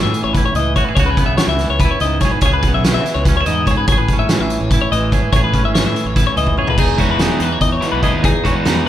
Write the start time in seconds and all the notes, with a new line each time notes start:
Already playing: A2 E3 C#4 E4 G#4
0.03 A2 E5
0.14 closed hi-hat
0.24 A1 C#5
0.33 E4 B4, kick, closed hi-hat
0.45 C#5
0.54 C#2 D#5, closed hi-hat
0.59 E3
0.76 A1 F#4 C#5, kick, closed hi-hat
0.85 G#4 B4
0.95 C#2 C#3 C#5, kick, closed hi-hat
1.00 F#4
1.06 G#4 B4
1.17 B3, kick, closed hi-hat
1.26 B1 E5
1.37 C#5, snare, closed hi-hat
1.44 C#2 E3
1.49 E5
1.59 snare, closed hi-hat
1.69 C#2 C#5
1.79 B4, kick, closed hi-hat
1.85 E4
1.91 C#5
2.00 C#2 D#5, closed hi-hat
2.05 G#2
2.20 B1 C#5, kick, snare, closed hi-hat
2.25 G#4
2.32 B4
2.41 C#2 C#3 C#5, kick, closed hi-hat
2.46 G#4
2.53 B4
2.63 kick, closed hi-hat
2.68 B3
2.73 B1 E5
2.84 E3 C#5, snare, closed hi-hat
2.94 C#3 E5
3.06 snare, closed hi-hat
3.15 C#2 C#5
3.25 C#4 B4, kick, snare, closed hi-hat
3.37 E4 C#5
3.46 E2 G#2 D#5, closed hi-hat
3.66 C#2 C#5, kick, closed hi-hat
3.71 G#4
3.77 B4
3.87 A1 A2 C#5, kick, closed hi-hat
3.92 G#4
3.98 B4
4.08 kick, closed hi-hat
4.13 C#4
4.18 G#1 E5
4.29 E3 C#5, snare, closed hi-hat
4.39 A1 E5
4.50 closed hi-hat
4.61 A1 C#5
4.70 E4 B4, kick, closed hi-hat
4.82 C#5
4.92 A1 E3 D#5, closed hi-hat
5.12 G#1 G#4 C#5, kick, closed hi-hat
5.22 B4
5.32 A1 A2 G#4 C#5, kick, closed hi-hat
5.44 B4
5.54 C#4, kick, closed hi-hat
5.63 G#1 E5
5.74 E3 C#5, snare, closed hi-hat
5.84 A2 E5
5.96 closed hi-hat
6.05 A1 C#5
6.16 E4 B4, kick, snare, closed hi-hat
6.27 C#5
6.36 C#2 E3 D#5, closed hi-hat
6.47 kick
6.57 A1 G#4 C#5, mid tom
6.67 B4, floor tom
6.77 E1 E2 D#4 G#4, kick, crash
6.98 E3 G#3 B3 E4 F#4 C#5, kick, closed hi-hat
7.10 E1 B4
7.19 E3 G#3 B3 D#4 E4 G#4, snare, closed hi-hat
7.39 E2 E3 B4, closed hi-hat
7.52 C#5
7.60 E2 D#5, kick, closed hi-hat
7.72 C#5
7.81 B2 E3 G#3 B3 E4, closed hi-hat
7.92 B1 B4
8.02 E3 G#3 B3 E4 G#4 D#5, kick, closed hi-hat
8.13 D#2 B4
8.23 E2 D#4 G#4, kick, closed hi-hat
8.44 E2 E3 G#3 B3 E4 F#4 C#5, kick, closed hi-hat
8.56 B4
8.65 E2 E3 G#3 B3 D#4 E4 G#4, snare, closed hi-hat